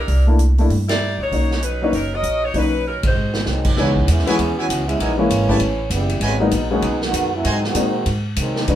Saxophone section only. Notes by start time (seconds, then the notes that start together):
0.00 G3 D4 E4 A#4
0.89 A#3 E4 G4 D5
1.21 A#3 D#4 F#4 C#5
1.63 F#3 C#4 D#4 B4
1.94 F#3 C#4 D#4 A#4
2.14 C#4 F#4 A#4 D#5
2.44 A#3 D#4 F#4 C#5
2.57 F#3 C#4 D#4 B4
2.87 F#3 C#4 D#4 A#4
3.07 G#3 D#4 F#4 C5